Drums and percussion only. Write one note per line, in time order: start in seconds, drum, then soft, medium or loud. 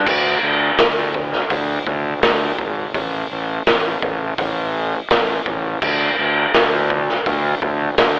0.06 kick loud
0.06 crash loud
0.78 snare loud
0.78 open hi-hat medium
1.14 kick medium
1.33 snare soft
1.50 kick loud
1.50 open hi-hat medium
1.87 kick medium
2.23 snare loud
2.23 open hi-hat medium
2.58 kick medium
2.94 kick loud
2.94 open hi-hat medium
3.67 snare loud
3.67 open hi-hat medium
4.02 kick medium
4.38 kick loud
4.38 open hi-hat medium
5.11 snare loud
5.11 open hi-hat medium
5.46 kick medium
5.82 kick loud
5.82 crash loud
6.54 snare loud
6.54 open hi-hat medium
6.90 kick medium
7.09 snare soft
7.26 kick loud
7.26 open hi-hat medium
7.62 kick medium
7.98 snare loud
7.98 open hi-hat medium